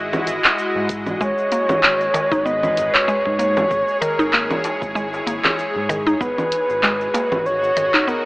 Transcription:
Already playing: analog synth bass G#1, synth drone G#3 E4 F#4 D#5
0.13 low conga, cabasa
0.26 analog synth bass G#1, closed hi-hat, cabasa
0.44 clap, cabasa
0.58 cabasa
0.75 analog synth bass G#2
0.89 kick, closed hi-hat, cabasa
1.06 low conga, cabasa
1.20 analog synth bass G#1, synth pluck G#3, soft synth lead C#5, kick, cabasa
1.38 cabasa
1.43 synth drone B4
1.52 synth pluck A#3, closed hi-hat, cabasa
1.69 analog synth bass G#1, low conga, cabasa
1.75 synth drone G#4
1.83 clap, darbuka tek, cabasa
2.01 cabasa
2.12 synth pluck D#3, synth drone C#5, closed hi-hat, darbuka tek, cabasa
2.32 analog synth bass G#1, synth pluck D#4, kick, cabasa
2.45 synth pluck B3, soft synth lead D#5, cabasa
2.63 low conga, cabasa
2.77 analog synth bass G#1, closed hi-hat, darbuka ka, darbuka dum, cabasa
2.93 soft synth lead C#5, clap, darbuka dum, cabasa
3.08 synth pluck G#3, cabasa
3.25 analog synth bass G#2, kick, darbuka ka
3.38 synth pluck A#3, soft synth lead C#5, closed hi-hat, cabasa
3.57 darbuka tek, low conga, cabasa
3.71 analog synth bass G#1, kick, cabasa
3.88 cabasa
4.01 synth pluck D#3, synth drone E4, soft synth lead A#4, closed hi-hat, cabasa
4.19 analog synth bass G#1, synth pluck D#4, cabasa
4.33 synth pluck A#3, clap, cabasa
4.50 low conga, cabasa
4.64 closed hi-hat, darbuka tek, cabasa
4.82 analog synth bass G#1, kick, cabasa
4.95 synth pluck G#3, cabasa
5.14 darbuka ka, cabasa
5.26 analog synth bass G#1, synth pluck A#3, closed hi-hat, cabasa
5.44 clap, low conga, cabasa
5.59 cabasa
5.75 analog synth bass G#2
5.89 synth pluck D#3, kick, closed hi-hat, darbuka dum, cabasa
6.07 synth pluck D#4, cabasa
6.21 analog synth bass G#1, synth pluck B3, soft synth lead B4, kick, cabasa
6.34 synth drone F#4
6.38 low conga, cabasa
6.52 closed hi-hat, cabasa
6.61 synth drone D#5
6.69 analog synth bass G#1, cabasa
6.83 synth pluck G#3, clap, darbuka tek, cabasa
7.01 cabasa
7.14 synth pluck A#3, closed hi-hat, darbuka tek, cabasa
7.32 analog synth bass G#1, kick, low conga, cabasa
7.46 soft synth lead C#5, cabasa
7.63 cabasa
7.76 analog synth bass G#1, synth pluck D#3, closed hi-hat, darbuka ka, darbuka dum, cabasa
7.93 synth pluck D#4, clap, darbuka dum, cabasa
8.08 synth pluck B3, soft synth lead A#4, cabasa

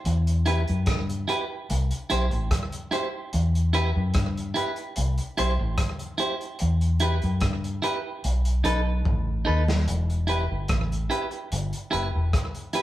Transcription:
0.05 fingered electric bass E2, closed hi-hat
0.27 closed hi-hat
0.46 clean electric guitar E4 G4 B4, closed hi-hat
0.68 fingered electric bass F#2, closed hi-hat
0.86 fingered electric bass G2, kick, cross-stick, closed hi-hat
1.09 closed hi-hat
1.28 clean electric guitar E4 G4 B4, closed hi-hat
1.70 fingered electric bass C2, closed hi-hat
1.91 closed hi-hat
2.10 fingered electric bass B1, clean electric guitar E4 G4 C5, closed hi-hat
2.31 fingered electric bass A1, muted clean electric guitar stroke, closed hi-hat
2.51 kick, cross-stick, closed hi-hat
2.72 closed hi-hat
2.91 clean electric guitar E4 G4 C5, closed hi-hat
3.33 fingered electric bass E2, closed hi-hat
3.55 closed hi-hat
3.73 clean electric guitar E4 G4 B4, closed hi-hat
3.96 fingered electric bass F#2
4.14 fingered electric bass G2, kick, cross-stick, closed hi-hat
4.37 closed hi-hat
4.54 clean electric guitar E4 G4 B4, closed hi-hat
4.76 closed hi-hat
4.96 fingered electric bass C2, closed hi-hat
5.18 closed hi-hat
5.38 fingered electric bass B1, clean electric guitar E4 G4 C5, closed hi-hat
5.60 fingered electric bass A1, muted clean electric guitar stroke
5.78 kick, cross-stick, closed hi-hat
5.99 closed hi-hat
6.18 clean electric guitar E4 G4 C5, closed hi-hat
6.41 closed hi-hat
6.59 fingered electric bass E2, closed hi-hat
6.81 closed hi-hat
6.99 clean electric guitar E4 G4 B4, closed hi-hat
7.22 fingered electric bass F#2, closed hi-hat
7.41 fingered electric bass G2, kick, cross-stick, closed hi-hat
7.64 closed hi-hat
7.82 clean electric guitar E4 G4 B4, closed hi-hat
8.24 fingered electric bass B1, closed hi-hat
8.45 closed hi-hat
8.64 fingered electric bass B1, clean electric guitar D#4 A4 B4, closed hi-hat
8.86 muted clean electric guitar stroke
9.05 fingered electric bass A1, kick
9.45 fingered electric bass D#2, clean electric guitar D#4 A4 B4
9.68 snare
9.88 fingered electric bass E1, closed hi-hat
10.10 closed hi-hat
10.27 clean electric guitar E4 G4 B4, closed hi-hat
10.52 fingered electric bass G1
10.68 fingered electric bass A1, kick, cross-stick, closed hi-hat
10.92 closed hi-hat
11.10 clean electric guitar E4 G4 B4, closed hi-hat
11.31 muted clean electric guitar stroke, closed hi-hat
11.52 fingered electric bass G1, closed hi-hat
11.73 closed hi-hat
11.91 fingered electric bass F#1, clean electric guitar E4 G4 B4, closed hi-hat
12.15 fingered electric bass E1
12.33 kick, cross-stick, closed hi-hat
12.55 closed hi-hat
12.73 clean electric guitar E4 G4 B4, closed hi-hat

